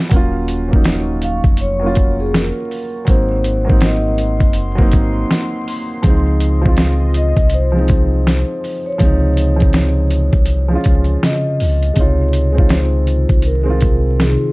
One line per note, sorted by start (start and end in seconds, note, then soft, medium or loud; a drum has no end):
0.00 0.13 G#3 medium
0.00 0.13 B3 medium
0.00 0.14 D4 medium
0.00 0.14 E4 medium
0.00 0.14 F#4 medium
0.09 1.41 D#1 loud
0.09 0.61 F#3 medium
0.09 3.05 F#3 medium
0.09 0.62 A#3 medium
0.09 3.05 F5 medium
0.09 3.05 C#6 medium
0.09 kick loud
0.09 closed hi-hat medium
0.14 0.63 C#4 medium
0.14 0.64 F4 loud
0.48 closed hi-hat medium
0.68 1.63 F#3 medium
0.68 1.64 A#3 medium
0.73 1.65 C#4 medium
0.73 1.66 D#4 medium
0.73 kick medium
0.84 snare loud
0.84 closed hi-hat medium
1.22 1.40 F5 loud
1.22 closed hi-hat medium
1.44 2.52 F1 medium
1.44 kick loud
1.44 closed hi-hat soft
1.57 2.15 C#5 medium
1.57 closed hi-hat medium
1.79 2.93 F#3 medium
1.79 2.94 A#3 medium
1.84 2.95 C#4 medium
1.84 2.96 F4 medium
1.95 kick medium
1.95 closed hi-hat medium
2.20 2.33 G#4 medium
2.34 3.10 A#4 medium
2.34 snare loud
2.34 closed hi-hat medium
2.71 open hi-hat soft
3.05 4.42 G#1 loud
3.05 3.57 F#3 medium
3.05 3.58 A#3 medium
3.05 6.01 A#4 medium
3.05 6.01 F#5 medium
3.05 8.96 C6 medium
3.05 kick loud
3.05 closed hi-hat medium
3.09 3.59 C4 medium
3.09 3.60 D#4 medium
3.09 3.85 C5 medium
3.44 closed hi-hat medium
3.65 4.59 F#3 medium
3.65 4.60 A#3 medium
3.69 4.61 C4 medium
3.69 4.63 D#4 medium
3.69 kick medium
3.81 4.53 D#5 medium
3.81 snare loud
3.81 closed hi-hat medium
4.18 closed hi-hat medium
4.40 4.95 F#1 medium
4.40 kick medium
4.40 closed hi-hat soft
4.53 closed hi-hat medium
4.75 5.89 F#3 medium
4.75 5.90 A#3 medium
4.75 kick medium
4.80 5.91 C4 medium
4.80 5.92 D#4 loud
4.92 5.25 G#1 medium
4.92 kick loud
4.92 closed hi-hat medium
5.31 snare loud
5.31 closed hi-hat medium
5.68 open hi-hat soft
6.02 7.34 C#2 loud
6.02 6.54 F3 medium
6.02 6.55 G#3 medium
6.02 8.98 F4 medium
6.02 8.98 D#5 medium
6.02 kick loud
6.02 closed hi-hat medium
6.07 6.56 C4 medium
6.07 6.57 D#4 medium
6.40 closed hi-hat medium
6.62 7.56 F3 medium
6.62 7.57 G#3 medium
6.66 7.58 C4 medium
6.66 7.59 F4 medium
6.66 kick medium
6.77 snare loud
6.77 closed hi-hat medium
7.14 7.54 D#5 loud
7.14 closed hi-hat medium
7.37 8.44 C2 loud
7.37 kick medium
7.37 closed hi-hat soft
7.50 closed hi-hat medium
7.54 8.90 C5 loud
7.72 8.85 F3 medium
7.72 8.86 G#3 medium
7.77 8.88 C4 medium
7.77 8.89 D#4 medium
7.88 kick medium
7.88 closed hi-hat medium
8.27 snare loud
8.27 closed hi-hat medium
8.64 open hi-hat soft
8.86 11.19 C#5 medium
8.98 10.30 C#2 loud
8.98 9.50 F3 medium
8.98 9.51 G#3 medium
8.98 kick medium
8.98 closed hi-hat medium
9.03 9.52 C3 medium
9.03 9.53 D#4 medium
9.37 closed hi-hat medium
9.56 10.51 F3 medium
9.56 10.52 G#3 medium
9.56 closed hi-hat soft
9.61 10.54 C3 medium
9.61 10.55 D#4 medium
9.61 kick medium
9.73 snare loud
9.73 closed hi-hat medium
10.11 closed hi-hat medium
10.33 10.77 C2 loud
10.33 kick loud
10.33 closed hi-hat soft
10.46 closed hi-hat medium
10.68 11.82 F3 medium
10.68 11.83 G#3 medium
10.73 11.84 C#4 medium
10.73 11.85 F4 medium
10.84 11.17 C#2 medium
10.84 kick medium
10.84 closed hi-hat medium
11.04 closed hi-hat soft
11.23 11.62 C#3 medium
11.23 12.00 D#5 medium
11.23 snare loud
11.23 closed hi-hat medium
11.60 11.92 C#2 loud
11.60 open hi-hat soft
11.83 closed hi-hat soft
11.94 13.26 C#2 loud
11.94 12.47 C3 medium
11.94 14.53 C3 medium
11.94 14.53 D#3 medium
11.94 12.45 G#3 medium
11.94 14.53 D#4 medium
11.94 14.53 F4 medium
11.94 kick medium
11.94 closed hi-hat medium
11.98 12.48 D#4 medium
11.98 12.49 F4 medium
11.98 12.74 C#5 medium
12.33 closed hi-hat medium
12.52 13.47 G#3 medium
12.52 13.49 C4 medium
12.57 13.50 D#4 medium
12.57 13.51 F4 medium
12.57 kick medium
12.69 13.48 C5 medium
12.69 snare loud
12.69 closed hi-hat medium
13.07 closed hi-hat medium
13.29 14.37 C2 medium
13.29 kick loud
13.29 closed hi-hat soft
13.42 14.22 A#4 medium
13.42 closed hi-hat medium
13.63 14.53 G#3 medium
13.63 14.53 C4 medium
13.68 14.53 D#4 medium
13.68 14.53 F4 medium
13.81 kick medium
13.81 closed hi-hat medium
14.20 14.53 G#4 medium
14.20 snare loud
14.20 closed hi-hat medium